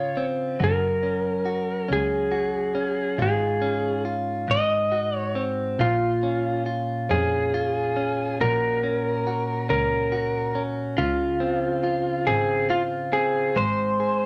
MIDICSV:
0, 0, Header, 1, 4, 480
1, 0, Start_track
1, 0, Key_signature, -5, "major"
1, 0, Tempo, 863309
1, 338, Time_signature, 6, 3, 24, 8
1, 7927, End_track
2, 0, Start_track
2, 0, Title_t, "Electric slide guitar"
2, 0, Program_c, 0, 29
2, 0, Note_on_c, 0, 73, 92
2, 143, Note_off_c, 0, 73, 0
2, 354, Note_on_c, 0, 70, 79
2, 1069, Note_off_c, 0, 70, 0
2, 1071, Note_on_c, 0, 68, 74
2, 1784, Note_off_c, 0, 68, 0
2, 1791, Note_on_c, 0, 68, 57
2, 2240, Note_off_c, 0, 68, 0
2, 2507, Note_on_c, 0, 75, 82
2, 2868, Note_off_c, 0, 75, 0
2, 2868, Note_on_c, 0, 73, 82
2, 3020, Note_off_c, 0, 73, 0
2, 3229, Note_on_c, 0, 65, 66
2, 3685, Note_off_c, 0, 65, 0
2, 3952, Note_on_c, 0, 68, 69
2, 4674, Note_off_c, 0, 68, 0
2, 4677, Note_on_c, 0, 70, 79
2, 5387, Note_off_c, 0, 70, 0
2, 5393, Note_on_c, 0, 70, 79
2, 5904, Note_off_c, 0, 70, 0
2, 6105, Note_on_c, 0, 65, 74
2, 6821, Note_on_c, 0, 68, 82
2, 6842, Note_off_c, 0, 65, 0
2, 7043, Note_off_c, 0, 68, 0
2, 7063, Note_on_c, 0, 65, 78
2, 7127, Note_off_c, 0, 65, 0
2, 7300, Note_on_c, 0, 68, 77
2, 7547, Note_off_c, 0, 68, 0
2, 7547, Note_on_c, 0, 72, 82
2, 7927, Note_off_c, 0, 72, 0
2, 7927, End_track
3, 0, Start_track
3, 0, Title_t, "Clean electric guitar"
3, 0, Program_c, 1, 27
3, 0, Note_on_c, 1, 49, 57
3, 0, Note_on_c, 1, 65, 54
3, 95, Note_on_c, 1, 60, 46
3, 330, Note_off_c, 1, 49, 0
3, 332, Note_on_c, 1, 54, 64
3, 334, Note_off_c, 1, 65, 0
3, 336, Note_on_c, 1, 66, 52
3, 383, Note_off_c, 1, 60, 0
3, 572, Note_on_c, 1, 61, 46
3, 802, Note_off_c, 1, 66, 0
3, 809, Note_on_c, 1, 66, 52
3, 1045, Note_off_c, 1, 61, 0
3, 1047, Note_on_c, 1, 61, 48
3, 1281, Note_off_c, 1, 66, 0
3, 1287, Note_on_c, 1, 66, 52
3, 1521, Note_off_c, 1, 61, 0
3, 1528, Note_on_c, 1, 61, 46
3, 1770, Note_off_c, 1, 54, 0
3, 1770, Note_off_c, 1, 66, 0
3, 1770, Note_on_c, 1, 44, 58
3, 1774, Note_on_c, 1, 65, 57
3, 1818, Note_off_c, 1, 61, 0
3, 2011, Note_on_c, 1, 61, 51
3, 2245, Note_off_c, 1, 65, 0
3, 2252, Note_on_c, 1, 65, 53
3, 2484, Note_off_c, 1, 44, 0
3, 2491, Note_on_c, 1, 44, 63
3, 2541, Note_off_c, 1, 61, 0
3, 2541, Note_off_c, 1, 65, 0
3, 2734, Note_on_c, 1, 66, 49
3, 2977, Note_on_c, 1, 60, 47
3, 3215, Note_off_c, 1, 44, 0
3, 3216, Note_off_c, 1, 66, 0
3, 3220, Note_on_c, 1, 46, 64
3, 3223, Note_on_c, 1, 65, 51
3, 3265, Note_off_c, 1, 60, 0
3, 3464, Note_on_c, 1, 61, 47
3, 3697, Note_off_c, 1, 65, 0
3, 3704, Note_on_c, 1, 65, 52
3, 3945, Note_off_c, 1, 61, 0
3, 3947, Note_on_c, 1, 61, 47
3, 4186, Note_off_c, 1, 65, 0
3, 4193, Note_on_c, 1, 65, 54
3, 4426, Note_off_c, 1, 61, 0
3, 4428, Note_on_c, 1, 61, 52
3, 4667, Note_off_c, 1, 46, 0
3, 4672, Note_off_c, 1, 65, 0
3, 4674, Note_on_c, 1, 46, 67
3, 4678, Note_on_c, 1, 66, 55
3, 4910, Note_off_c, 1, 61, 0
3, 4912, Note_on_c, 1, 61, 50
3, 5147, Note_off_c, 1, 66, 0
3, 5154, Note_on_c, 1, 66, 54
3, 5386, Note_off_c, 1, 61, 0
3, 5388, Note_on_c, 1, 61, 51
3, 5621, Note_off_c, 1, 66, 0
3, 5628, Note_on_c, 1, 66, 50
3, 5864, Note_off_c, 1, 61, 0
3, 5866, Note_on_c, 1, 61, 46
3, 6103, Note_off_c, 1, 66, 0
3, 6104, Note_off_c, 1, 46, 0
3, 6107, Note_on_c, 1, 49, 63
3, 6111, Note_on_c, 1, 65, 54
3, 6338, Note_off_c, 1, 61, 0
3, 6340, Note_on_c, 1, 60, 56
3, 6574, Note_off_c, 1, 65, 0
3, 6580, Note_on_c, 1, 65, 57
3, 6819, Note_off_c, 1, 60, 0
3, 6821, Note_on_c, 1, 60, 51
3, 7053, Note_off_c, 1, 65, 0
3, 7059, Note_on_c, 1, 65, 55
3, 7295, Note_off_c, 1, 60, 0
3, 7297, Note_on_c, 1, 60, 50
3, 7537, Note_off_c, 1, 49, 0
3, 7539, Note_on_c, 1, 56, 67
3, 7542, Note_on_c, 1, 72, 50
3, 7587, Note_off_c, 1, 65, 0
3, 7783, Note_on_c, 1, 68, 50
3, 7927, Note_off_c, 1, 56, 0
3, 7927, Note_off_c, 1, 60, 0
3, 7927, Note_off_c, 1, 68, 0
3, 7927, Note_off_c, 1, 72, 0
3, 7927, End_track
4, 0, Start_track
4, 0, Title_t, "Double bass"
4, 0, Program_c, 2, 43
4, 0, Note_on_c, 2, 32, 71
4, 315, Note_off_c, 2, 32, 0
4, 334, Note_on_c, 2, 30, 82
4, 1030, Note_off_c, 2, 30, 0
4, 1054, Note_on_c, 2, 37, 70
4, 1751, Note_off_c, 2, 37, 0
4, 1771, Note_on_c, 2, 32, 82
4, 2470, Note_off_c, 2, 32, 0
4, 2494, Note_on_c, 2, 32, 78
4, 3194, Note_off_c, 2, 32, 0
4, 3218, Note_on_c, 2, 34, 73
4, 3922, Note_off_c, 2, 34, 0
4, 3943, Note_on_c, 2, 41, 73
4, 4646, Note_off_c, 2, 41, 0
4, 4672, Note_on_c, 2, 34, 79
4, 5366, Note_off_c, 2, 34, 0
4, 5389, Note_on_c, 2, 37, 76
4, 6080, Note_off_c, 2, 37, 0
4, 6103, Note_on_c, 2, 37, 83
4, 6797, Note_off_c, 2, 37, 0
4, 6821, Note_on_c, 2, 32, 77
4, 7518, Note_off_c, 2, 32, 0
4, 7541, Note_on_c, 2, 32, 77
4, 7927, Note_off_c, 2, 32, 0
4, 7927, End_track
0, 0, End_of_file